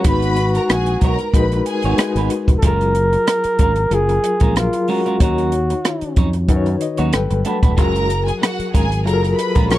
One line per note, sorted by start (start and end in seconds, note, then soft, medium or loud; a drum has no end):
0.04 0.58 G#1 medium
0.04 1.16 G#3 medium
0.04 0.35 B3 medium
0.04 1.16 D#4 medium
0.04 0.36 D#4 medium
0.04 1.16 F#4 medium
0.04 0.36 F#4 medium
0.04 1.16 B4 medium
0.04 0.52 B4 medium
0.04 0.36 B4 medium
0.04 0.52 B5 loud
0.04 kick loud
0.04 closed hi-hat medium
0.09 1.32 F#4 medium
0.22 closed hi-hat soft
0.36 closed hi-hat medium
0.55 0.67 A#4 medium
0.55 0.67 A#5 medium
0.55 muted clean electric guitar stroke soft
0.55 closed hi-hat soft
0.70 0.96 A#1 medium
0.70 0.96 G#4 medium
0.70 0.96 G#5 medium
0.70 muted clean electric guitar stroke soft
0.70 cross-stick loud
0.70 closed hi-hat medium
0.86 closed hi-hat medium
1.01 1.16 B1 medium
1.01 1.14 B3 soft
1.01 1.14 D#4 medium
1.01 1.14 F#4 medium
1.01 1.28 A#4 medium
1.01 1.15 C#5 medium
1.01 1.28 A#5 medium
1.01 kick medium
1.01 closed hi-hat medium
1.19 muted clean electric guitar stroke soft
1.19 closed hi-hat soft
1.34 1.60 A#1 medium
1.34 1.90 G#3 medium
1.34 1.90 D#4 medium
1.34 1.90 F#4 medium
1.34 1.42 A#4 medium
1.34 1.60 B4 medium
1.34 1.60 B5 medium
1.34 muted clean electric guitar stroke soft
1.34 kick medium
1.34 closed hi-hat medium
1.42 1.94 B4 medium
1.52 muted clean electric guitar stroke soft
1.52 closed hi-hat soft
1.66 2.27 G#4 medium
1.66 2.27 G#5 medium
1.66 closed hi-hat medium
1.82 1.96 G#1 medium
1.82 1.97 D#4 medium
1.82 1.97 F#4 medium
1.82 1.97 C#5 medium
1.82 closed hi-hat soft
1.87 1.98 B3 medium
1.98 2.54 G#3 medium
1.98 2.54 D#4 medium
1.98 2.54 F#4 medium
1.98 2.55 B4 medium
1.98 muted fingered electric bass stroke soft
1.98 muted clean electric guitar stroke soft
1.98 cross-stick loud
1.98 closed hi-hat medium
2.15 2.28 G#1 loud
2.15 2.30 B3 soft
2.15 2.29 D#4 medium
2.15 2.29 F#4 medium
2.15 2.29 B4 medium
2.15 closed hi-hat medium
2.30 muted clean electric guitar stroke soft
2.30 closed hi-hat medium
2.48 2.60 F1 medium
2.48 muted clean electric guitar stroke soft
2.48 kick medium
2.48 closed hi-hat soft
2.58 2.67 A4 medium
2.62 3.15 F#1 medium
2.62 3.74 F#3 medium
2.62 2.93 G#3 medium
2.62 2.93 C#4 medium
2.62 3.74 F4 medium
2.62 2.94 F4 medium
2.62 3.74 G#4 medium
2.62 2.71 A4 medium
2.62 2.94 A#4 medium
2.62 3.96 A#4 loud
2.62 kick loud
2.62 closed hi-hat medium
2.71 3.78 A#4 medium
2.81 closed hi-hat soft
2.95 closed hi-hat medium
3.13 muted clean electric guitar stroke soft
3.13 closed hi-hat soft
3.27 muted clean electric guitar stroke soft
3.27 cross-stick loud
3.27 closed hi-hat medium
3.44 muted fingered electric bass stroke soft
3.44 closed hi-hat medium
3.59 3.86 G#1 medium
3.59 3.71 G#3 soft
3.59 3.71 C#4 medium
3.59 3.71 F4 medium
3.59 3.72 A#4 medium
3.59 kick medium
3.59 closed hi-hat medium
3.76 muted clean electric guitar stroke soft
3.76 closed hi-hat soft
3.91 4.17 F#1 medium
3.91 4.47 F#3 medium
3.91 4.47 F4 medium
3.91 4.47 G#4 medium
3.91 4.57 G#4 loud
3.91 4.47 A#4 medium
3.91 muted clean electric guitar stroke soft
3.91 closed hi-hat medium
4.09 muted clean electric guitar stroke soft
4.09 closed hi-hat soft
4.24 closed hi-hat medium
4.40 4.67 A#1 medium
4.40 4.54 G#3 medium
4.40 4.54 C#4 medium
4.40 4.54 F4 medium
4.40 4.54 A#4 medium
4.40 kick medium
4.40 closed hi-hat soft
4.55 5.11 F#3 medium
4.55 5.11 F4 medium
4.55 4.90 F4 medium
4.55 5.12 G#4 medium
4.55 5.12 A#4 medium
4.55 muted clean electric guitar stroke soft
4.55 cross-stick medium
4.55 closed hi-hat medium
4.73 muted clean electric guitar stroke soft
4.73 closed hi-hat soft
4.88 5.00 G#3 soft
4.88 5.00 C#4 medium
4.88 5.00 F4 medium
4.88 5.21 F#4 medium
4.88 5.00 A#4 medium
4.88 open hi-hat medium
5.06 5.16 G#3 soft
5.06 5.16 C#4 soft
5.06 5.16 F4 medium
5.06 5.15 A#4 soft
5.06 closed hi-hat soft
5.20 5.73 D#2 medium
5.20 6.31 D#3 medium
5.20 5.50 F#3 medium
5.20 5.51 C#4 medium
5.20 6.31 D#4 medium
5.20 5.51 D#4 medium
5.20 6.31 F#4 medium
5.20 6.14 F#4 medium
5.20 5.51 A#4 medium
5.20 6.32 C#5 medium
5.20 kick loud
5.20 closed hi-hat medium
5.38 closed hi-hat soft
5.52 closed hi-hat medium
5.70 muted clean electric guitar stroke soft
5.70 closed hi-hat soft
5.85 muted clean electric guitar stroke soft
5.85 cross-stick medium
5.85 closed hi-hat medium
6.01 muted fingered electric bass stroke soft
6.01 closed hi-hat soft
6.16 6.48 F2 medium
6.16 6.28 F#3 medium
6.16 6.28 C#4 medium
6.16 6.29 D#4 medium
6.16 6.29 C#5 medium
6.16 kick medium
6.16 closed hi-hat medium
6.33 muted clean electric guitar stroke soft
6.33 closed hi-hat soft
6.48 6.75 F#2 medium
6.48 7.04 D#3 medium
6.48 7.05 D#4 medium
6.48 7.05 F#4 medium
6.48 6.57 B4 medium
6.48 muted clean electric guitar stroke soft
6.48 kick medium
6.48 closed hi-hat medium
6.56 7.08 C#5 medium
6.66 muted clean electric guitar stroke soft
6.66 closed hi-hat soft
6.81 6.98 D#5 medium
6.81 closed hi-hat medium
6.97 7.11 D#2 medium
6.97 7.11 F#3 medium
6.97 7.11 C#4 medium
6.97 7.11 D#4 medium
6.97 7.11 C#5 medium
6.97 7.12 F#5 medium
6.97 closed hi-hat soft
7.13 7.28 G1 medium
7.13 7.69 F#3 medium
7.13 7.69 G3 medium
7.13 7.69 A4 medium
7.13 7.70 B4 medium
7.13 7.44 G5 medium
7.13 muted clean electric guitar stroke soft
7.13 cross-stick medium
7.13 closed hi-hat medium
7.31 7.43 G1 medium
7.31 muted clean electric guitar stroke soft
7.31 closed hi-hat medium
7.45 7.57 A3 medium
7.45 7.57 D4 medium
7.45 7.57 F#4 medium
7.45 7.58 B4 medium
7.45 7.76 A5 medium
7.45 closed hi-hat medium
7.63 7.78 E1 medium
7.63 7.73 A3 soft
7.63 7.73 D4 soft
7.63 7.73 F#4 soft
7.63 7.72 B4 soft
7.63 kick medium
7.63 closed hi-hat soft
7.77 8.30 F#1 medium
7.77 8.88 F#3 medium
7.77 8.07 G#3 medium
7.77 8.07 C#4 medium
7.77 8.07 F4 medium
7.77 8.88 F#4 medium
7.77 8.88 G#4 medium
7.77 8.24 A#4 medium
7.77 8.08 A#4 medium
7.77 8.89 A#4 medium
7.77 8.24 A#5 loud
7.77 kick loud
7.77 closed hi-hat medium
7.96 closed hi-hat soft
8.10 closed hi-hat medium
8.26 8.38 G#4 medium
8.26 8.38 G#5 medium
8.26 muted clean electric guitar stroke soft
8.26 closed hi-hat soft
8.41 8.67 F#4 medium
8.41 8.67 F#5 medium
8.41 muted clean electric guitar stroke soft
8.41 cross-stick loud
8.41 closed hi-hat medium
8.59 muted fingered electric bass stroke soft
8.59 closed hi-hat soft
8.73 9.07 G#1 medium
8.73 8.85 G#3 soft
8.73 8.85 C#4 medium
8.73 8.86 F4 soft
8.73 9.00 G#4 medium
8.73 8.86 A#4 medium
8.73 8.99 G#5 medium
8.73 kick medium
8.73 closed hi-hat medium
8.90 muted clean electric guitar stroke soft
8.90 closed hi-hat soft
9.05 9.33 F#1 medium
9.05 9.62 F#3 medium
9.05 9.62 F4 medium
9.05 9.62 G#4 medium
9.05 9.14 A4 medium
9.05 9.32 A#4 medium
9.05 9.31 A#5 medium
9.05 muted clean electric guitar stroke soft
9.05 closed hi-hat medium
9.14 9.65 A#4 medium
9.23 muted clean electric guitar stroke soft
9.23 closed hi-hat soft
9.37 9.63 B4 medium
9.37 9.63 B5 medium
9.37 closed hi-hat medium
9.55 9.78 A#1 medium
9.55 9.69 G#3 soft
9.55 9.68 C#4 medium
9.55 9.68 F4 medium
9.55 9.68 A#4 medium
9.55 kick medium
9.55 closed hi-hat soft
9.69 9.78 F#3 medium
9.69 9.78 F4 medium
9.69 9.78 G#4 medium
9.69 9.78 A#4 medium
9.69 9.78 C#5 loud
9.69 9.78 C#6 loud
9.69 muted clean electric guitar stroke soft
9.69 cross-stick medium
9.69 closed hi-hat medium